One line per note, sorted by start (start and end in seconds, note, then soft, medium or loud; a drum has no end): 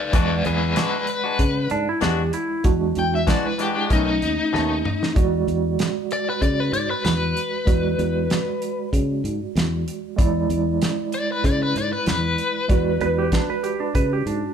0.00 0.15 B4 medium
0.00 0.14 D5 medium
0.12 0.42 E2 medium
0.12 0.33 E3 medium
0.12 2.60 G#3 medium
0.12 0.33 G#3 medium
0.12 0.34 D4 medium
0.12 0.34 F#4 medium
0.12 0.44 B4 medium
0.12 2.61 D5 medium
0.12 0.45 D5 medium
0.12 2.61 F#5 medium
0.12 kick loud
0.12 closed hi-hat medium
0.45 0.74 E2 medium
0.45 0.75 G#4 medium
0.45 0.76 B4 medium
0.45 closed hi-hat soft
0.76 0.96 E3 medium
0.76 0.96 G#3 medium
0.76 0.96 D4 medium
0.76 0.97 F#4 medium
0.76 1.06 G#4 medium
0.76 1.07 B4 medium
0.76 snare loud
0.76 closed hi-hat medium
1.07 1.70 B4 medium
1.07 closed hi-hat medium
1.24 1.43 G#3 soft
1.24 1.43 D4 soft
1.24 1.42 F#4 medium
1.39 1.67 C#3 loud
1.39 kick medium
1.39 closed hi-hat medium
1.70 1.86 G#2 medium
1.70 1.87 D4 medium
1.70 closed hi-hat medium
1.89 2.02 E4 medium
2.01 2.30 E2 medium
2.01 2.21 E3 medium
2.01 2.21 G#3 medium
2.01 2.22 D4 loud
2.01 2.22 F#4 loud
2.01 2.32 G4 medium
2.01 snare medium
2.01 closed hi-hat medium
2.33 2.64 E4 medium
2.33 closed hi-hat medium
2.64 2.93 E2 medium
2.64 3.25 G#3 medium
2.64 3.26 D4 medium
2.64 3.27 F#4 medium
2.64 kick loud
2.64 closed hi-hat medium
2.95 3.25 E2 medium
2.95 3.14 G5 medium
2.95 closed hi-hat soft
3.15 3.29 E5 medium
3.27 3.47 E3 medium
3.27 3.90 G#3 soft
3.27 3.47 G#3 medium
3.27 3.90 D4 soft
3.27 3.47 D4 medium
3.27 3.90 E4 medium
3.27 3.48 F#4 medium
3.27 3.46 D5 medium
3.27 kick medium
3.27 snare loud
3.27 closed hi-hat medium
3.46 3.59 B4 medium
3.58 3.75 E3 medium
3.58 3.76 G#3 soft
3.58 3.75 D4 medium
3.58 3.74 F#4 soft
3.58 3.90 G4 medium
3.58 closed hi-hat medium
3.75 3.90 G#3 soft
3.75 3.90 D4 medium
3.75 3.90 F#4 medium
3.89 4.19 B1 loud
3.89 4.09 B2 medium
3.89 4.10 D#3 medium
3.89 5.13 A3 medium
3.89 4.10 A3 medium
3.89 5.13 C#4 medium
3.89 4.10 C#4 medium
3.89 5.14 D#4 medium
3.89 5.13 D#4 medium
3.89 kick medium
3.89 closed hi-hat medium
4.22 4.37 D#2 medium
4.22 closed hi-hat medium
4.53 4.82 D#2 medium
4.53 4.73 B2 medium
4.53 4.73 D#3 medium
4.53 4.73 A3 medium
4.53 4.74 C#4 medium
4.53 snare medium
4.85 mid tom medium
5.03 snare medium
5.15 5.44 E2 medium
5.15 7.63 G#3 medium
5.15 7.64 F#4 medium
5.15 7.63 D5 medium
5.15 kick loud
5.15 closed hi-hat medium
5.47 5.76 E2 medium
5.47 closed hi-hat soft
5.79 snare loud
5.79 closed hi-hat medium
6.11 6.28 D5 medium
6.11 closed hi-hat medium
6.29 6.42 B4 medium
6.41 6.70 C#3 medium
6.41 6.60 D5 medium
6.41 kick medium
6.41 closed hi-hat medium
6.60 6.73 B4 medium
6.72 6.88 G#2 medium
6.72 6.89 D5 loud
6.72 closed hi-hat medium
6.90 7.04 B4 medium
7.05 7.33 E2 medium
7.05 8.89 B4 medium
7.05 snare loud
7.05 closed hi-hat medium
7.37 closed hi-hat medium
7.65 7.95 E2 medium
7.65 10.14 G#3 medium
7.65 10.15 F#4 medium
7.65 10.14 D5 medium
7.65 kick loud
7.65 closed hi-hat medium
7.98 8.27 E2 medium
7.98 closed hi-hat soft
8.30 snare loud
8.30 closed hi-hat medium
8.62 closed hi-hat medium
8.93 9.21 C#3 medium
8.93 kick medium
8.93 closed hi-hat medium
9.24 9.39 G#2 medium
9.24 closed hi-hat medium
9.56 9.84 E2 medium
9.56 snare loud
9.56 closed hi-hat medium
9.88 closed hi-hat medium
10.16 10.47 E2 medium
10.16 12.65 G#3 medium
10.16 12.66 E4 medium
10.16 12.65 D5 medium
10.16 kick loud
10.16 closed hi-hat medium
10.50 10.78 E2 medium
10.50 closed hi-hat medium
10.82 snare loud
10.82 closed hi-hat medium
11.12 11.30 D5 medium
11.12 closed hi-hat medium
11.32 11.45 B4 medium
11.44 11.72 C#3 loud
11.44 11.61 D5 medium
11.44 kick medium
11.44 closed hi-hat medium
11.63 11.76 B4 medium
11.76 11.91 G#2 medium
11.76 11.92 D5 medium
11.76 closed hi-hat medium
11.93 12.07 B4 medium
12.06 12.35 E2 medium
12.06 13.92 B4 medium
12.06 snare loud
12.06 closed hi-hat medium
12.38 closed hi-hat medium
12.68 12.98 E2 medium
12.68 14.54 G#3 medium
12.68 14.54 F#4 medium
12.68 14.54 D5 medium
12.68 kick loud
12.68 closed hi-hat medium
13.01 13.29 E2 medium
13.01 13.17 B4 medium
13.01 closed hi-hat soft
13.18 13.32 G4 medium
13.32 13.49 D4 medium
13.32 kick medium
13.32 snare loud
13.32 closed hi-hat medium
13.50 13.64 B4 medium
13.63 13.80 G4 medium
13.63 closed hi-hat medium
13.80 13.94 D4 medium
13.95 14.23 C#3 loud
13.95 14.11 B4 loud
13.95 kick medium
13.95 closed hi-hat medium
14.13 14.27 G4 medium
14.26 14.41 G#2 medium
14.26 14.54 D4 medium
14.26 closed hi-hat medium